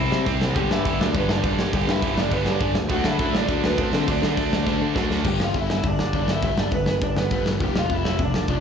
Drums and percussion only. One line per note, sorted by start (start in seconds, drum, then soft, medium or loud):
0.12 snare loud
0.26 kick loud
0.26 crash medium
0.41 snare loud
0.56 kick loud
0.56 crash medium
0.71 snare loud
0.85 kick medium
0.85 crash soft
1.01 snare loud
1.15 kick loud
1.15 crash medium
1.29 snare loud
1.44 kick loud
1.44 crash medium
1.59 snare loud
1.73 kick loud
1.73 crash medium
1.89 snare loud
2.02 kick loud
2.02 crash medium
2.18 snare loud
2.31 kick loud
2.31 crash medium
2.46 snare loud
2.61 kick loud
2.61 crash medium
2.75 snare loud
2.89 kick loud
2.89 crash medium
3.04 snare loud
3.19 kick loud
3.19 crash medium
3.35 snare loud
3.49 kick loud
3.49 crash medium
3.64 snare loud
3.78 kick loud
3.78 crash medium
3.93 snare loud
4.08 kick loud
4.08 crash medium
4.23 snare loud
4.37 kick medium
4.37 crash medium
4.53 snare loud
4.67 kick loud
4.67 snare medium
4.96 kick loud
4.96 snare medium
5.11 snare medium
5.24 kick loud
5.24 crash loud
5.40 snare loud
5.54 kick loud
5.54 open hi-hat medium
5.70 snare loud
5.83 kick loud
5.83 open hi-hat medium
5.99 snare loud
6.13 kick loud
6.13 open hi-hat medium
6.28 snare loud
6.42 kick loud
6.42 open hi-hat medium
6.58 snare loud
6.71 kick loud
6.71 open hi-hat medium
6.86 snare loud
7.02 kick loud
7.02 open hi-hat medium
7.17 snare medium
7.31 kick loud
7.31 open hi-hat medium
7.46 snare loud
7.60 kick loud
7.60 open hi-hat medium
7.76 snare loud
7.90 kick loud
7.90 open hi-hat medium
8.05 snare loud
8.19 kick loud
8.19 open hi-hat medium
8.34 snare loud
8.48 kick loud
8.48 open hi-hat medium